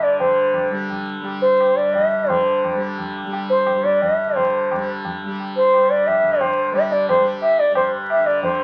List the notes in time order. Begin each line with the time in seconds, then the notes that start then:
Already playing: G2 D3 G3
0.03 D5
0.19 D3 C5, tabla tin, tabla ge
0.54 tabla na, tabla ge
0.70 G3, tabla te
0.90 tabla tin, tabla ge
1.20 G3
1.25 tabla tin
1.42 C5
1.60 tabla na
1.72 G2
1.77 D5
1.94 E5, tabla tin, tabla ge
2.24 D3
2.29 C5, tabla tin, tabla ge
2.64 tabla na, tabla ge
2.74 G3
2.98 tabla tin, tabla ge
3.16 tabla na
3.24 G3
3.33 tabla tin
3.50 C5
3.67 tabla na, tabla ge
3.74 G2
3.84 D5, tabla te
4.02 E5, tabla tin, tabla ge
4.25 D3
4.36 C5, tabla tin, tabla ge
4.71 G3, tabla na, tabla ge
5.05 tabla tin, tabla ge
5.24 G3
5.40 tabla tin
5.56 C5
5.74 G2, tabla na
5.90 D5
6.07 E5, tabla na, tabla ge
6.23 D3, tabla ge
6.41 C5, tabla tin, tabla ge
6.72 G3 E5, tabla na
6.92 D5, tabla te
7.09 C5, tabla na, tabla ge
7.20 G3
7.42 E5, tabla na
7.59 D5, tabla te
7.70 G2
7.75 C5, tabla na, tabla ge
8.10 E5, tabla na
8.19 D3
8.26 D5, tabla te
8.42 D3 C5, tabla tin, tabla ge